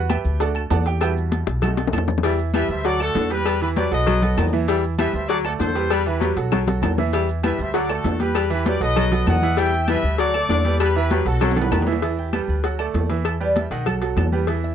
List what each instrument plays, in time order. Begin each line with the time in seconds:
Already playing: upright bass E2
0.10 grand piano G4 B4 E5 G5, cowbell, high conga, low timbale, low agogo, claves, maracas
0.25 upright bass D2, maracas
0.40 grand piano A3 D4 F#4 A4 D5 F#5 A5, cowbell, high conga, low agogo, maracas
0.55 high conga, low agogo, claves, maracas
0.70 upright bass E2, grand piano A4 D5 F#5 A5, cowbell, high conga, low timbale, maracas
0.86 grand piano G4 G5, cowbell, maracas
1.01 grand piano G3 E4 F#4 G4 B4 E5 G5, cowbell, high conga, low agogo, claves, maracas
1.17 high conga, maracas
1.32 cowbell, high conga, low timbale, low agogo, maracas
1.47 upright bass B1, cowbell, high bongo, high conga, maracas
1.62 grand piano A3 D#4 F#4, cowbell, high conga, low conga, low agogo, claves, maracas
1.67 high bongo
1.77 cowbell, high bongo, high conga, low agogo, maracas
1.87 low bongo
1.93 upright bass E2, cowbell, high conga, low timbale, low agogo, claves, maracas
1.98 low bongo
2.08 low bongo, high conga, maracas
2.18 low bongo
2.23 grand piano E3 E4 E5, baritone saxophone G3, cowbell, low agogo, maracas
2.39 high conga, maracas
2.54 baritone saxophone E3, grand piano G3 G4 B4, trumpet section B4 E5, cowbell, high conga, low timbale, low agogo, claves, maracas
2.69 upright bass D2, trumpet section C5 E5, maracas
2.85 grand piano F#3 F#4 F#5, baritone saxophone F#3, trumpet section A4 D5, cowbell, high conga, low agogo, maracas
3.00 grand piano A3 A4 D5, trumpet section F#4 A4, high conga, low agogo, claves, maracas
3.15 upright bass E2, baritone saxophone D3, cowbell, high conga, low timbale, maracas
3.30 grand piano G3 G4 B4, trumpet section G4 B4, cowbell, maracas
3.46 baritone saxophone G3, cowbell, high conga, low agogo, claves, maracas
3.61 grand piano E3 E4 E5, trumpet section G4 B4, high conga, maracas
3.76 baritone saxophone F#3, grand piano G3 G4 B4, trumpet section B4 D5, cowbell, high conga, low timbale, low agogo, maracas
3.91 upright bass B1, grand piano F#3 F#4 A4, trumpet section B4 D#5, cowbell, high conga, maracas
4.06 baritone saxophone F#3, cowbell, high conga, low conga, low agogo, claves, maracas
4.22 grand piano F#3 F#4 A4, cowbell, high conga, low conga, low agogo, maracas
4.37 upright bass E2, baritone saxophone D#3, cowbell, high conga, low timbale, low agogo, claves, maracas
4.53 grand piano E3 E4 E5, high conga, maracas
4.68 grand piano E3 E4 E5, baritone saxophone G3, cowbell, high conga, low agogo, maracas
4.83 high conga, maracas
4.99 baritone saxophone E3, grand piano G3 G4 B4, trumpet section B4 E5, cowbell, high conga, low timbale, low agogo, claves, maracas
5.13 upright bass D2, trumpet section C5 E5, maracas
5.29 baritone saxophone F#3, grand piano F#3 F#4 F#5, trumpet section A4 D5, cowbell, high conga, low agogo, maracas
5.45 grand piano A3 A4 D5, trumpet section F#4 A4, high conga, low agogo, claves, maracas
5.59 upright bass E2, baritone saxophone D3, trumpet section A4 C5, cowbell, high conga, low timbale, maracas
5.75 grand piano G3 G4 B4, cowbell, maracas
5.90 baritone saxophone G3, trumpet section G4 B4, cowbell, high conga, low agogo, claves, maracas
6.06 grand piano E3 E4 E5, trumpet section G4 B4, high conga, maracas
6.20 baritone saxophone F#3, grand piano G3 G4 B4, cowbell, high conga, low timbale, low agogo, maracas
6.36 upright bass B1, grand piano F#3 F#4 A4, cowbell, high conga, maracas
6.52 baritone saxophone F#3, cowbell, high bongo, high conga, low conga, low agogo, claves, maracas
6.67 grand piano F#3 F#4 A4, cowbell, high bongo, high conga, low conga, low agogo, maracas
6.82 upright bass E2, baritone saxophone D#3, cowbell, low bongo, high conga, low timbale, low agogo, claves, maracas
6.98 grand piano E3 E4 E5, low bongo, high conga, maracas
7.13 grand piano E3 E4 E5, baritone saxophone G3, cowbell, low agogo, maracas
7.29 high conga, maracas
7.43 baritone saxophone E3, grand piano G3 G4 B4, trumpet section B4 E5, cowbell, high conga, low timbale, low agogo, claves, maracas
7.59 upright bass D2, trumpet section C5 E5, maracas
7.74 grand piano F#3 F#4 F#5, baritone saxophone F#3, trumpet section A4 D5, cowbell, high conga, low agogo, maracas
7.89 grand piano A3 A4 D5, trumpet section F#4 A4, high conga, low agogo, claves, maracas
8.04 upright bass E2, baritone saxophone D3, cowbell, high conga, low timbale, maracas
8.20 grand piano G3 G4 B4, trumpet section G4 B4, cowbell, high conga, maracas
8.35 baritone saxophone G3, cowbell, high conga, low agogo, claves, maracas
8.50 grand piano E3 E4 E5, trumpet section G4 B4, high conga, maracas
8.65 baritone saxophone F#3, grand piano G3 G4 B4, trumpet section B4 D5, cowbell, high conga, low timbale, low agogo, maracas
8.81 upright bass B1, grand piano F#3 F#4 A4, trumpet section B4 D#5, cowbell, high conga, maracas
8.96 baritone saxophone F#3, cowbell, high conga, low conga, low agogo, claves, maracas
9.12 grand piano F#3 F#4 A4, cowbell, high conga, low conga, low agogo, maracas
9.26 upright bass E2, baritone saxophone D#3, trumpet section D#5 F#5, cowbell, high conga, low timbale, low agogo, claves, maracas
9.42 grand piano E3 E4 E5, high conga, maracas
9.57 grand piano E3 E4 E5, baritone saxophone G3, trumpet section E5 G5, cowbell, high conga, low agogo, maracas
9.73 high conga, maracas
9.88 baritone saxophone E3, grand piano G3 G4 B4, trumpet section B4 E5, cowbell, high conga, low timbale, low agogo, claves, maracas
10.03 upright bass D2, maracas
10.18 baritone saxophone F#3, grand piano F#3 F#4 F#5, trumpet section A4 D5, cowbell, high conga, low agogo, maracas
10.34 grand piano A3 A4 D5, high conga, low agogo, claves, maracas
10.49 upright bass E2, baritone saxophone D3, cowbell, high conga, low timbale, maracas
10.65 grand piano G3 G4 B4, cowbell, high conga, maracas
10.80 baritone saxophone G3, trumpet section G4 B4, cowbell, low agogo, claves, maracas
10.95 grand piano E3 E4 E5, trumpet section G4 B4, high conga, maracas
11.10 baritone saxophone F#3, grand piano G3 G4 B4, cowbell, high conga, low timbale, low agogo, maracas
11.25 upright bass B1, grand piano F#3 F#4 A4, trumpet section F#4 A4, cowbell, high conga, maracas
11.41 baritone saxophone F#3, cowbell, high conga, low conga, high timbale, low agogo, claves, maracas
11.51 high timbale
11.56 grand piano D#3 A4 F#5, trumpet section G4 B4, cowbell, high conga, low conga, low agogo, maracas
11.62 low timbale
11.71 upright bass E2, baritone saxophone D#3, cowbell, high conga, low timbale, low agogo, claves, maracas
11.82 low timbale
11.87 grand piano E3 E4 E5, high conga, maracas
11.92 low timbale
12.02 grand piano E3 E4 E5, cowbell, low agogo
12.18 cuban tres G4, high conga
12.33 grand piano G3 G4 B4, cuban tres A4, cowbell, high conga, low timbale, low agogo, claves
12.48 upright bass D2, cuban tres B4
12.64 grand piano F#3 F#4 F#5, cowbell, high conga, low agogo
12.79 grand piano A3 A4 D5, high conga, low agogo, claves
12.94 upright bass E2, cowbell, high conga, low timbale
13.10 grand piano E3 E4 E5, cowbell, high conga
13.25 cowbell, high conga, low agogo, claves
13.40 grand piano G3 G4 B4, cuban tres D5, high conga
13.56 cuban tres E5, cowbell, high conga, low timbale, low agogo
13.70 upright bass B1, grand piano D#3 D#4 D#5, cuban tres F#5, cowbell, high conga
13.86 grand piano F#3 F#4 A4, cowbell, high conga, low conga, low agogo, claves
14.02 grand piano F#3 F#4 A4, cowbell, low agogo
14.16 upright bass E2, cowbell, high conga, low timbale, low agogo, claves
14.32 grand piano G3 G4 B4, high conga
14.47 grand piano E3 E4 E5, cowbell, high conga, low agogo
14.63 cuban tres E5, high conga